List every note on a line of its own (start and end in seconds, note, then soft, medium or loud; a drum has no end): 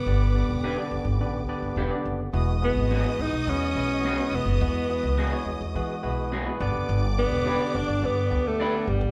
0.00 0.59 G2 medium
0.00 2.29 D3 medium
0.00 0.88 B3 loud
0.00 2.30 B3 medium
0.00 2.30 G4 medium
0.00 1.73 B4 loud
0.00 1.73 D6 loud
0.06 0.43 G1 loud
0.06 0.26 B3 medium
0.06 0.26 D4 medium
0.06 0.26 G4 medium
0.06 0.26 B4 medium
0.06 0.26 D5 medium
0.35 0.63 B3 medium
0.35 0.64 D4 medium
0.35 0.64 G4 medium
0.35 0.64 B4 medium
0.35 0.64 D5 medium
0.50 0.74 E1 medium
0.64 0.76 D4 medium
0.64 0.77 G4 medium
0.64 0.77 B4 loud
0.77 1.06 B3 medium
0.77 1.06 D4 medium
0.77 1.06 G4 medium
0.77 1.06 B4 medium
0.77 1.06 D5 loud
0.91 1.03 F#1 medium
1.05 1.20 G1 medium
1.20 1.44 A1 medium
1.20 1.39 B3 medium
1.20 1.39 D4 medium
1.20 1.40 G4 medium
1.20 1.40 B4 medium
1.20 1.40 D5 medium
1.48 1.77 B3 medium
1.48 1.77 D4 medium
1.48 1.77 G4 medium
1.48 1.78 B4 medium
1.48 1.78 D5 loud
1.48 1.75 G5 medium
1.48 muted upright bass stroke soft
1.62 1.75 G1 medium
1.76 1.89 E1 medium
1.76 1.90 D4 loud
1.76 1.90 G4 loud
1.76 1.91 B4 loud
1.76 2.30 F#5 medium
1.90 2.19 B3 medium
1.90 2.19 D4 medium
1.90 2.20 G4 medium
1.90 2.19 B4 medium
1.90 2.20 D5 loud
2.05 2.30 F#1 medium
2.33 2.71 E1 loud
2.33 3.15 E3 medium
2.33 6.57 E3 medium
2.33 6.57 G#3 medium
2.33 2.53 B3 loud
2.33 2.53 E4 medium
2.33 2.53 F#4 medium
2.33 6.57 F#4 medium
2.33 2.53 G#4 medium
2.33 2.53 B4 medium
2.33 6.28 D#5 loud
2.33 6.28 D#6 loud
2.62 2.91 B3 medium
2.62 3.23 B3 loud
2.62 2.91 E4 medium
2.62 2.91 F#4 medium
2.62 2.91 G#4 medium
2.62 2.91 B4 medium
2.76 3.01 G#1 medium
2.91 3.04 B3 loud
2.91 3.04 F#4 loud
2.91 3.04 G#4 loud
3.05 3.34 B3 medium
3.05 3.34 E4 medium
3.05 3.34 F#4 medium
3.05 3.34 G#4 medium
3.05 3.34 B4 medium
3.19 3.31 A1 medium
3.19 3.51 D#4 loud
3.33 3.45 B1 medium
3.47 3.72 E2 loud
3.47 3.67 B3 medium
3.47 4.37 C#4 loud
3.47 3.67 E4 medium
3.47 3.68 F#4 medium
3.47 3.68 G#4 medium
3.47 3.67 B4 medium
3.75 4.13 B1 medium
3.75 4.05 B3 medium
3.75 4.05 E4 medium
3.75 4.05 F#4 medium
3.75 4.05 G#4 medium
3.75 4.05 B4 medium
4.04 4.17 B3 medium
4.04 4.18 F#4 medium
4.04 4.18 G#4 loud
4.19 4.47 B3 medium
4.19 4.47 E4 medium
4.19 4.47 F#4 medium
4.19 4.47 G#4 medium
4.19 4.47 B4 medium
4.31 4.44 E1 medium
4.31 5.48 B3 loud
4.45 4.58 F#1 loud
4.61 4.98 E2 loud
4.61 5.43 E3 medium
4.61 4.81 B3 medium
4.61 4.81 E4 medium
4.61 4.81 F#4 medium
4.61 4.81 G#4 medium
4.61 4.81 B4 medium
4.90 5.18 B3 medium
4.90 5.19 E4 medium
4.90 5.19 F#4 medium
4.90 5.18 G#4 medium
4.90 5.19 B4 medium
5.03 5.28 C#2 medium
5.18 5.31 B3 medium
5.18 5.31 F#4 medium
5.18 5.32 G#4 loud
5.31 5.61 B3 medium
5.31 5.61 E4 medium
5.31 5.61 F#4 medium
5.31 5.61 G#4 medium
5.31 5.61 C#5 loud
5.46 5.58 D#2 medium
5.61 5.73 E2 medium
5.75 6.00 E3 loud
5.75 5.94 B3 medium
5.75 5.94 E4 medium
5.75 5.95 F#4 medium
5.75 5.94 G#4 medium
5.75 5.95 B4 loud
6.03 6.41 B1 medium
6.03 6.32 B3 medium
6.03 6.32 E4 medium
6.03 6.32 F#4 medium
6.03 6.32 G#4 medium
6.03 6.32 B4 loud
6.32 6.45 B3 loud
6.32 6.46 F#4 loud
6.32 6.46 G#4 loud
6.46 6.59 B3 medium
6.46 6.60 E4 medium
6.46 6.60 F#4 medium
6.46 6.60 G#4 medium
6.46 6.60 B4 loud
6.60 6.73 G1 loud
6.60 7.42 G2 medium
6.60 9.11 D3 medium
6.60 7.06 B3 loud
6.60 9.11 B3 medium
6.60 7.06 D4 medium
6.60 7.06 G4 medium
6.60 9.11 G4 medium
6.60 7.06 B4 medium
6.60 8.84 D5 loud
6.60 7.06 D5 loud
6.60 8.84 D6 loud
6.89 7.26 G1 loud
7.18 7.77 B3 loud
7.18 7.47 B3 medium
7.18 7.46 D4 medium
7.18 7.47 G4 medium
7.18 7.47 B4 medium
7.18 7.47 D5 medium
7.31 7.56 E1 medium
7.45 7.59 D4 medium
7.45 7.59 G4 loud
7.45 7.59 B4 loud
7.60 7.89 B3 medium
7.60 7.89 D4 medium
7.60 7.89 G4 medium
7.60 7.89 B4 medium
7.60 7.89 D5 medium
7.75 7.87 F#1 loud
7.75 8.07 D4 loud
7.88 8.00 G1 medium
8.02 8.27 G2 loud
8.02 8.22 B3 medium
8.02 8.48 B3 loud
8.02 8.22 D4 medium
8.02 8.22 G4 medium
8.02 8.22 B4 medium
8.02 8.22 D5 medium
8.30 8.68 D2 medium
8.30 8.60 B3 medium
8.30 8.60 D4 medium
8.30 8.60 G4 medium
8.30 8.60 B4 medium
8.30 8.60 D5 medium
8.47 8.90 A3 loud
8.60 8.73 D4 loud
8.60 8.73 G4 medium
8.60 8.73 B4 loud
8.73 9.02 B3 medium
8.73 9.02 D4 medium
8.73 9.03 G4 medium
8.73 9.03 B4 medium
8.73 9.03 D5 medium
8.87 9.00 G1 loud
8.87 9.11 G3 medium
9.01 9.11 A1 loud